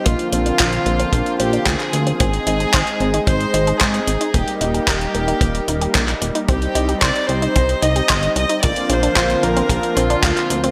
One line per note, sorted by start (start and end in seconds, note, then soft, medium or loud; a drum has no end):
0.00 4.30 C4 medium
0.06 0.16 A#1 loud
0.06 2.18 D3 medium
0.06 2.18 F3 medium
0.06 2.18 A#3 medium
0.06 0.14 A#3 medium
0.06 2.18 F4 medium
0.06 0.31 F4 loud
0.06 kick loud
0.06 closed hi-hat medium
0.19 closed hi-hat soft
0.32 0.52 A#1 medium
0.32 0.45 C4 medium
0.32 1.36 F4 loud
0.32 closed hi-hat medium
0.46 0.55 D4 medium
0.46 closed hi-hat soft
0.59 0.79 A#1 medium
0.59 0.65 F4 loud
0.59 kick loud
0.59 clap loud
0.59 closed hi-hat medium
0.73 closed hi-hat soft
0.86 1.05 A#1 medium
0.86 0.95 A#3 medium
0.86 closed hi-hat soft
1.00 1.05 C4 medium
1.00 closed hi-hat soft
1.13 1.22 A#1 medium
1.13 1.22 A#3 medium
1.13 kick loud
1.13 closed hi-hat medium
1.26 closed hi-hat soft
1.40 1.59 A#1 medium
1.40 1.52 C4 medium
1.40 1.66 G4 medium
1.40 closed hi-hat medium
1.53 1.62 D4 medium
1.53 closed hi-hat soft
1.66 1.76 D2 medium
1.66 1.72 F4 loud
1.66 2.19 G#4 loud
1.66 kick loud
1.66 clap loud
1.66 closed hi-hat medium
1.80 clap soft
1.80 closed hi-hat soft
1.93 2.12 D2 medium
1.93 2.02 A#3 medium
1.93 closed hi-hat medium
2.07 2.12 C4 medium
2.07 closed hi-hat soft
2.20 2.39 G#1 loud
2.20 4.32 G#3 medium
2.20 2.29 C4 medium
2.20 6.45 D#4 medium
2.20 3.23 G#4 loud
2.20 kick loud
2.20 closed hi-hat medium
2.33 closed hi-hat soft
2.47 2.66 G#1 medium
2.47 2.60 D#4 medium
2.47 closed hi-hat medium
2.60 2.69 G#4 medium
2.60 closed hi-hat soft
2.74 2.83 G#1 loud
2.74 2.79 C5 loud
2.74 kick loud
2.74 clap loud
2.74 closed hi-hat medium
2.87 closed hi-hat soft
3.00 3.20 G#1 loud
3.00 3.09 C4 medium
3.00 closed hi-hat soft
3.14 3.19 D#4 medium
3.14 closed hi-hat soft
3.27 3.46 G#1 medium
3.27 3.36 C4 medium
3.27 3.81 C5 loud
3.27 kick loud
3.27 closed hi-hat medium
3.41 closed hi-hat soft
3.54 3.73 G#1 medium
3.54 3.67 D#4 medium
3.54 closed hi-hat medium
3.67 3.76 G#4 medium
3.67 closed hi-hat soft
3.81 4.00 G#2 loud
3.81 4.34 G#4 loud
3.81 3.86 C5 loud
3.81 kick loud
3.81 clap loud
3.81 closed hi-hat medium
3.94 closed hi-hat soft
4.07 4.17 G#1 medium
4.07 4.16 C4 medium
4.07 closed hi-hat medium
4.21 4.26 D#4 medium
4.21 closed hi-hat soft
4.34 4.44 D#1 loud
4.34 8.59 G3 medium
4.34 6.46 A#3 medium
4.34 4.43 A#3 medium
4.34 4.60 G4 loud
4.34 kick loud
4.34 closed hi-hat medium
4.48 closed hi-hat soft
4.61 4.80 D#1 medium
4.61 4.74 D#4 medium
4.61 6.18 G4 loud
4.61 closed hi-hat medium
4.74 4.83 G4 medium
4.74 closed hi-hat soft
4.87 5.07 D#1 loud
4.87 4.93 A#4 loud
4.87 kick loud
4.87 clap loud
4.87 closed hi-hat medium
5.01 closed hi-hat soft
5.15 5.34 D#1 medium
5.15 5.23 A#3 medium
5.15 closed hi-hat soft
5.28 5.33 D#4 medium
5.28 closed hi-hat soft
5.41 5.60 D#1 loud
5.41 5.50 A#3 medium
5.41 kick loud
5.41 closed hi-hat medium
5.55 closed hi-hat soft
5.68 5.87 D#1 medium
5.68 5.81 D#4 medium
5.68 closed hi-hat medium
5.81 5.90 G4 medium
5.81 closed hi-hat soft
5.95 6.14 A#1 medium
5.95 6.00 A#4 loud
5.95 kick loud
5.95 clap loud
5.95 closed hi-hat medium
6.08 clap soft
6.08 closed hi-hat soft
6.22 6.31 D#1 medium
6.22 6.31 A#3 medium
6.22 closed hi-hat medium
6.35 6.40 D#4 medium
6.35 closed hi-hat soft
6.48 6.68 C2 loud
6.48 6.57 C4 medium
6.48 10.71 C4 medium
6.48 8.61 D#4 medium
6.48 6.98 G4 loud
6.48 kick loud
6.48 closed hi-hat medium
6.62 closed hi-hat soft
6.75 6.95 C2 medium
6.75 6.88 D#4 medium
6.75 closed hi-hat medium
6.89 6.97 G4 medium
6.89 closed hi-hat soft
7.02 7.12 C2 loud
7.02 7.07 C5 loud
7.02 7.29 D5 loud
7.02 kick loud
7.02 clap loud
7.02 closed hi-hat medium
7.16 closed hi-hat soft
7.29 7.48 C2 loud
7.29 7.38 C4 medium
7.29 7.82 C5 loud
7.29 closed hi-hat soft
7.42 7.48 D#4 medium
7.42 closed hi-hat soft
7.56 7.75 C2 medium
7.56 7.64 C4 medium
7.56 kick loud
7.56 closed hi-hat medium
7.69 closed hi-hat soft
7.82 8.02 C2 loud
7.82 7.95 D#4 medium
7.82 8.35 D#5 loud
7.82 closed hi-hat medium
7.96 8.05 G4 medium
7.96 closed hi-hat soft
8.09 8.29 G1 loud
8.09 8.15 C5 loud
8.09 kick medium
8.09 clap loud
8.09 closed hi-hat medium
8.23 closed hi-hat soft
8.36 8.46 C2 medium
8.36 8.45 C4 medium
8.36 8.61 D#5 loud
8.36 closed hi-hat medium
8.49 8.55 D#4 medium
8.49 closed hi-hat soft
8.63 8.73 A#1 loud
8.63 10.71 D3 medium
8.63 10.71 F3 medium
8.63 8.72 A#3 medium
8.63 10.71 A#3 medium
8.63 10.71 F4 medium
8.63 8.88 D5 loud
8.63 kick loud
8.63 closed hi-hat medium
8.76 closed hi-hat soft
8.89 9.09 A#1 medium
8.89 9.02 C4 medium
8.89 9.43 C5 loud
8.89 closed hi-hat medium
9.03 9.12 D4 medium
9.03 closed hi-hat soft
9.16 9.36 A#1 loud
9.16 9.22 F4 loud
9.16 kick medium
9.16 clap loud
9.16 closed hi-hat medium
9.30 closed hi-hat soft
9.43 9.62 A#1 medium
9.43 9.52 A#3 medium
9.43 9.97 A#4 loud
9.43 closed hi-hat soft
9.56 9.62 C4 medium
9.56 closed hi-hat soft
9.69 9.79 A#1 medium
9.69 9.79 A#3 medium
9.69 kick loud
9.69 closed hi-hat medium
9.83 closed hi-hat soft
9.97 10.16 A#1 medium
9.97 10.09 C4 medium
9.97 10.71 F4 loud
9.97 closed hi-hat medium
10.10 10.19 D4 medium
10.10 closed hi-hat soft
10.23 10.33 D2 medium
10.23 10.29 F4 loud
10.23 kick loud
10.23 clap loud
10.23 closed hi-hat medium
10.37 clap soft
10.37 closed hi-hat soft
10.50 10.70 D2 medium
10.50 10.59 A#3 medium
10.50 closed hi-hat medium
10.64 10.69 C4 medium
10.64 closed hi-hat soft